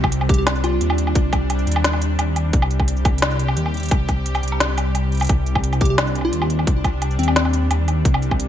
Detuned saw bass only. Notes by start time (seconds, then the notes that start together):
Already playing: C2
0.81 D#2
1.15 C2
1.67 D#2
2.19 D#2
2.53 C2
3.57 D#2
3.91 C2
4.43 C2
5.29 C2
6.33 D#2
6.67 C2
7.19 D#2
7.71 D#2
8.05 C2